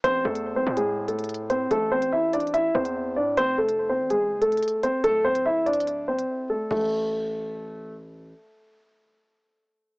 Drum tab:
CC |------------------------------------------------------------------------------------------------|------------------------------------------------------------------------------------------------|------------------------------------------------------------------------------------------------|------------------------------------------------------------------------------------------------|
HH |x-----------------x-----------------------x-----------------x-----x--x--x--x--------x-----------|x-----------------x-----------------x---x---x---x-----------------x-----------------------------|x-----------------x-----------------------x-----------------x-----x--x--x--x--------x-----------|x-----------------x-----------------x---x---x---x-----------------x-----------------------------|
FT |------------------------------------------------------------------------------------------------|------------------------------------------------------------------------------------------------|------------------------------------------------------------------------------------------------|------------------------------------------------------------------------------------------------|
BD |------------------------------------------------------------------------------------------------|------------------------------------------------------------------------------------------------|------------------------------------------------------------------------------------------------|------------------------------------------------------------------------------------------------|

CC |x-----------------------------------------------------------------------------------------------|------------------------------------------------------------------------------------------------|
HH |------------------------------------------------------------------------------------------------|------------------------------------------------------------------------------------------------|
FT |o-----------------------------------------------------------------------------------------------|------------------------------------------------------------------------------------------------|
BD |o-----------------------------------------------------------------------------------------------|------------------------------------------------------------------------------------------------|